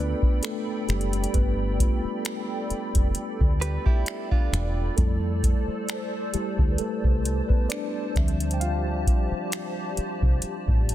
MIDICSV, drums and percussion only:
0, 0, Header, 1, 2, 480
1, 0, Start_track
1, 0, Tempo, 909091
1, 708, Time_signature, 4, 2, 24, 8
1, 5781, End_track
2, 0, Start_track
2, 0, Title_t, "Drums"
2, 118, Note_on_c, 9, 36, 101
2, 171, Note_off_c, 9, 36, 0
2, 225, Note_on_c, 9, 42, 61
2, 235, Note_on_c, 9, 26, 106
2, 278, Note_off_c, 9, 42, 0
2, 288, Note_off_c, 9, 26, 0
2, 468, Note_on_c, 9, 42, 34
2, 475, Note_on_c, 9, 26, 68
2, 521, Note_off_c, 9, 42, 0
2, 528, Note_off_c, 9, 26, 0
2, 533, Note_on_c, 9, 42, 42
2, 586, Note_off_c, 9, 42, 0
2, 597, Note_on_c, 9, 42, 51
2, 650, Note_off_c, 9, 42, 0
2, 653, Note_on_c, 9, 42, 58
2, 706, Note_off_c, 9, 42, 0
2, 708, Note_on_c, 9, 36, 93
2, 708, Note_on_c, 9, 42, 61
2, 761, Note_off_c, 9, 36, 0
2, 761, Note_off_c, 9, 42, 0
2, 949, Note_on_c, 9, 36, 93
2, 952, Note_on_c, 9, 42, 69
2, 1001, Note_off_c, 9, 36, 0
2, 1005, Note_off_c, 9, 42, 0
2, 1188, Note_on_c, 9, 42, 70
2, 1193, Note_on_c, 9, 26, 118
2, 1241, Note_off_c, 9, 42, 0
2, 1246, Note_off_c, 9, 26, 0
2, 1428, Note_on_c, 9, 42, 40
2, 1481, Note_off_c, 9, 42, 0
2, 1557, Note_on_c, 9, 36, 88
2, 1557, Note_on_c, 9, 42, 63
2, 1610, Note_off_c, 9, 36, 0
2, 1610, Note_off_c, 9, 42, 0
2, 1662, Note_on_c, 9, 42, 77
2, 1715, Note_off_c, 9, 42, 0
2, 1798, Note_on_c, 9, 36, 90
2, 1851, Note_off_c, 9, 36, 0
2, 1911, Note_on_c, 9, 42, 68
2, 1964, Note_off_c, 9, 42, 0
2, 2038, Note_on_c, 9, 36, 96
2, 2091, Note_off_c, 9, 36, 0
2, 2145, Note_on_c, 9, 42, 60
2, 2155, Note_on_c, 9, 26, 109
2, 2198, Note_off_c, 9, 42, 0
2, 2208, Note_off_c, 9, 26, 0
2, 2277, Note_on_c, 9, 36, 90
2, 2330, Note_off_c, 9, 36, 0
2, 2395, Note_on_c, 9, 26, 69
2, 2395, Note_on_c, 9, 42, 57
2, 2447, Note_off_c, 9, 42, 0
2, 2448, Note_off_c, 9, 26, 0
2, 2628, Note_on_c, 9, 36, 94
2, 2628, Note_on_c, 9, 42, 59
2, 2680, Note_off_c, 9, 42, 0
2, 2681, Note_off_c, 9, 36, 0
2, 2869, Note_on_c, 9, 36, 93
2, 2872, Note_on_c, 9, 42, 69
2, 2921, Note_off_c, 9, 36, 0
2, 2925, Note_off_c, 9, 42, 0
2, 3107, Note_on_c, 9, 42, 73
2, 3113, Note_on_c, 9, 26, 114
2, 3160, Note_off_c, 9, 42, 0
2, 3166, Note_off_c, 9, 26, 0
2, 3346, Note_on_c, 9, 42, 65
2, 3398, Note_off_c, 9, 42, 0
2, 3477, Note_on_c, 9, 36, 93
2, 3530, Note_off_c, 9, 36, 0
2, 3582, Note_on_c, 9, 42, 78
2, 3634, Note_off_c, 9, 42, 0
2, 3718, Note_on_c, 9, 36, 83
2, 3770, Note_off_c, 9, 36, 0
2, 3830, Note_on_c, 9, 42, 67
2, 3883, Note_off_c, 9, 42, 0
2, 3957, Note_on_c, 9, 36, 102
2, 4010, Note_off_c, 9, 36, 0
2, 4065, Note_on_c, 9, 42, 62
2, 4075, Note_on_c, 9, 26, 106
2, 4118, Note_off_c, 9, 42, 0
2, 4128, Note_off_c, 9, 26, 0
2, 4308, Note_on_c, 9, 36, 101
2, 4308, Note_on_c, 9, 42, 32
2, 4315, Note_on_c, 9, 26, 65
2, 4361, Note_off_c, 9, 36, 0
2, 4361, Note_off_c, 9, 42, 0
2, 4368, Note_off_c, 9, 26, 0
2, 4372, Note_on_c, 9, 42, 41
2, 4425, Note_off_c, 9, 42, 0
2, 4437, Note_on_c, 9, 42, 53
2, 4490, Note_off_c, 9, 42, 0
2, 4492, Note_on_c, 9, 42, 61
2, 4545, Note_off_c, 9, 42, 0
2, 4547, Note_on_c, 9, 42, 60
2, 4600, Note_off_c, 9, 42, 0
2, 4788, Note_on_c, 9, 36, 90
2, 4792, Note_on_c, 9, 42, 66
2, 4841, Note_off_c, 9, 36, 0
2, 4845, Note_off_c, 9, 42, 0
2, 5028, Note_on_c, 9, 42, 74
2, 5033, Note_on_c, 9, 26, 114
2, 5080, Note_off_c, 9, 42, 0
2, 5086, Note_off_c, 9, 26, 0
2, 5266, Note_on_c, 9, 42, 66
2, 5319, Note_off_c, 9, 42, 0
2, 5397, Note_on_c, 9, 36, 91
2, 5450, Note_off_c, 9, 36, 0
2, 5501, Note_on_c, 9, 42, 78
2, 5554, Note_off_c, 9, 42, 0
2, 5638, Note_on_c, 9, 36, 86
2, 5690, Note_off_c, 9, 36, 0
2, 5750, Note_on_c, 9, 42, 69
2, 5781, Note_off_c, 9, 42, 0
2, 5781, End_track
0, 0, End_of_file